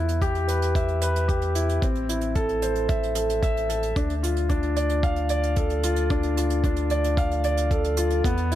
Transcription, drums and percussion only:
0.09 closed hi-hat
0.22 kick, closed hi-hat
0.35 closed hi-hat
0.48 closed hi-hat
0.62 closed hi-hat
0.75 kick, closed hi-hat
0.88 closed hi-hat
1.02 closed hi-hat
1.16 closed hi-hat
1.29 kick, closed hi-hat
1.42 closed hi-hat
1.55 closed hi-hat
1.69 closed hi-hat
1.82 kick, closed hi-hat
1.95 closed hi-hat
2.09 closed hi-hat
2.21 closed hi-hat
2.35 kick, closed hi-hat
2.49 closed hi-hat
2.62 closed hi-hat
2.75 closed hi-hat
2.89 kick, closed hi-hat
3.03 closed hi-hat
3.15 closed hi-hat
3.30 closed hi-hat
3.43 kick, closed hi-hat
3.57 closed hi-hat
3.70 closed hi-hat
3.83 closed hi-hat
3.96 kick, closed hi-hat
4.10 closed hi-hat
4.24 closed hi-hat
4.37 closed hi-hat
4.49 kick, closed hi-hat
4.63 closed hi-hat
4.76 closed hi-hat
4.89 closed hi-hat
5.03 kick, closed hi-hat
5.16 closed hi-hat
5.29 closed hi-hat
5.44 closed hi-hat
5.56 kick, closed hi-hat
5.70 closed hi-hat
5.83 closed hi-hat
5.96 closed hi-hat
6.10 kick, closed hi-hat
6.23 closed hi-hat
6.37 closed hi-hat
6.50 closed hi-hat
6.64 kick, closed hi-hat
6.76 closed hi-hat
6.90 closed hi-hat
7.04 closed hi-hat
7.17 kick, closed hi-hat
7.31 closed hi-hat
7.44 closed hi-hat
7.57 closed hi-hat
7.71 kick, closed hi-hat
7.84 closed hi-hat
7.97 closed hi-hat
8.10 closed hi-hat
8.24 kick, closed hi-hat
8.37 closed hi-hat
8.52 closed hi-hat

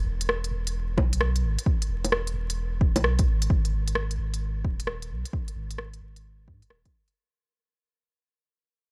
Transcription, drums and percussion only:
0.21 closed hi-hat
0.29 cross-stick
0.44 closed hi-hat
0.67 closed hi-hat
0.97 kick, low bongo
1.13 closed hi-hat
1.21 cross-stick
1.36 closed hi-hat
1.59 closed hi-hat
1.66 kick
1.82 closed hi-hat
2.05 closed hi-hat, low bongo
2.12 cross-stick
2.27 closed hi-hat
2.50 closed hi-hat
2.81 kick
2.96 closed hi-hat, low bongo
3.04 cross-stick
3.19 kick, closed hi-hat
3.42 closed hi-hat
3.50 kick
3.65 closed hi-hat
3.88 closed hi-hat
3.95 cross-stick
4.11 closed hi-hat
4.34 closed hi-hat
4.64 kick
4.80 closed hi-hat
4.87 cross-stick
5.02 closed hi-hat
5.25 closed hi-hat
5.33 kick
5.48 closed hi-hat
5.71 closed hi-hat
5.78 cross-stick
5.94 closed hi-hat
6.16 closed hi-hat
6.48 kick
6.62 closed hi-hat
6.70 cross-stick
6.85 kick, closed hi-hat
7.08 closed hi-hat

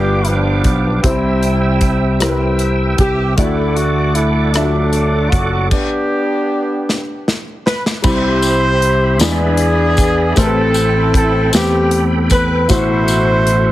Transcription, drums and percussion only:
0.25 closed hi-hat
0.64 kick, closed hi-hat
1.04 kick, closed hi-hat
1.43 closed hi-hat
1.81 kick, closed hi-hat
2.20 cross-stick, closed hi-hat
2.59 closed hi-hat
2.98 kick, closed hi-hat
3.38 kick, closed hi-hat
3.77 closed hi-hat
4.15 closed hi-hat
4.54 cross-stick, closed hi-hat
4.93 closed hi-hat
5.32 kick, closed hi-hat
5.71 kick, crash
6.89 snare
7.28 snare
7.67 snare
7.86 snare
8.04 kick, crash, tambourine
8.42 closed hi-hat, tambourine
8.82 closed hi-hat
9.20 snare, closed hi-hat, tambourine
9.57 closed hi-hat
9.97 kick, closed hi-hat, tambourine
10.36 kick, closed hi-hat, tambourine
10.74 closed hi-hat, tambourine
11.14 kick, closed hi-hat
11.53 snare, closed hi-hat, tambourine
11.91 closed hi-hat
12.30 kick, closed hi-hat, tambourine
12.69 kick, closed hi-hat, tambourine
13.08 closed hi-hat, tambourine
13.47 closed hi-hat

